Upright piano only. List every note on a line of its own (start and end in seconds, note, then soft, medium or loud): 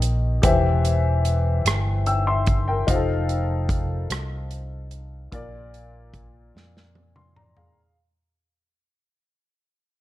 0.00 0.38 G4 medium
0.00 0.39 A#4 medium
0.00 0.40 D#5 medium
0.42 1.61 E3 medium
0.42 2.83 G4 medium
0.42 2.03 C5 medium
0.42 2.04 E5 medium
2.07 2.26 G5 soft
2.07 2.26 E6 soft
2.27 2.66 E5 medium
2.27 2.65 C6 medium
2.68 3.07 A#4 soft
2.68 3.06 G5 medium
2.87 5.28 D#4 medium
2.87 5.28 F4 medium
2.87 2.94 G4 soft
2.87 5.29 C5 medium
2.87 5.29 F5 medium
2.95 5.32 A4 medium
5.32 6.51 A#2 medium
5.32 7.73 F4 medium
5.32 6.52 A#4 medium
5.32 6.53 D5 medium
7.16 7.35 C6 medium
7.36 7.56 D5 soft
7.36 7.56 A#5 medium
7.57 7.96 G#4 soft
7.57 7.95 F5 soft